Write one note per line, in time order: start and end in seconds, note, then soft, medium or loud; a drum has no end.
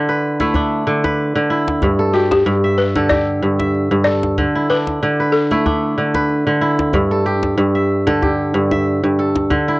0.00 0.86 D3 medium
0.00 0.55 D4 medium
0.00 0.40 E4 medium
0.00 0.26 A4 medium
0.09 1.04 B4 medium
0.40 2.40 A3 medium
0.40 1.50 E4 medium
0.40 djembe slap medium
0.40 djembe tone soft
0.54 2.23 D4 medium
0.54 djembe slap soft
0.54 djembe bass medium
0.87 1.34 D3 medium
0.87 djembe slap soft
1.04 2.27 B4 medium
1.04 djembe slap medium
1.04 djembe tone medium
1.36 1.87 D3 medium
1.50 3.07 E4 medium
1.50 djembe slap soft
1.68 djembe slap medium
1.68 djembe tone medium
1.82 2.45 G2 medium
1.82 djembe slap soft
1.82 djembe bass medium
1.99 2.96 A4 medium
2.13 2.31 F#4 medium
2.13 3.10 G4 medium
2.31 2.79 G4 medium
2.31 djembe slap medium
2.31 djembe tone medium
2.46 3.41 G2 medium
2.46 djembe slap soft
2.64 3.59 E5 medium
2.78 3.11 B4 medium
2.96 4.37 D3 medium
2.96 4.06 A4 medium
2.96 djembe slap medium
2.96 djembe tone soft
3.09 4.52 G4 medium
3.09 4.03 D5 loud
3.09 djembe bass medium
3.42 3.90 G2 medium
3.59 4.63 E5 medium
3.59 djembe slap medium
3.59 djembe tone soft
3.75 djembe slap soft
3.91 4.42 G2 medium
4.04 5.38 A4 medium
4.04 4.71 D5 loud
4.04 djembe slap soft
4.23 djembe slap soft
4.23 djembe tone medium
4.38 5.01 D3 medium
4.38 djembe slap soft
4.38 djembe bass medium
4.55 5.51 E4 medium
4.70 5.65 D4 medium
4.70 5.35 B4 medium
4.87 djembe slap soft
4.87 djembe tone soft
5.02 5.97 D3 medium
5.02 djembe slap soft
5.20 6.14 B4 medium
5.32 5.93 A4 medium
5.51 7.51 A3 medium
5.51 6.61 E4 medium
5.51 djembe tone medium
5.66 7.34 D4 medium
5.66 djembe bass medium
5.98 6.46 D3 medium
6.14 7.38 B4 medium
6.14 djembe slap medium
6.14 djembe tone medium
6.29 djembe slap soft
6.47 6.98 D3 medium
6.61 8.18 E4 medium
6.61 djembe slap soft
6.79 djembe slap medium
6.79 djembe tone medium
6.93 7.56 G2 medium
6.93 djembe slap soft
6.93 djembe bass medium
7.11 8.06 A4 medium
7.26 8.22 G4 medium
7.43 djembe slap medium
7.43 djembe tone medium
7.58 8.53 G2 medium
7.58 djembe slap soft
7.75 8.71 E5 medium
8.07 9.49 D3 medium
8.07 9.18 A4 medium
8.07 djembe slap medium
8.07 djembe tone soft
8.22 9.64 G4 medium
8.22 djembe bass medium
8.54 9.02 G2 medium
8.71 9.75 E5 medium
8.71 djembe slap medium
8.71 djembe tone medium
8.86 djembe slap soft
9.04 9.54 G2 medium
9.19 9.80 A4 medium
9.36 djembe slap medium
9.36 djembe tone medium
9.50 9.80 D3 medium
9.50 djembe bass medium
9.68 9.80 E4 medium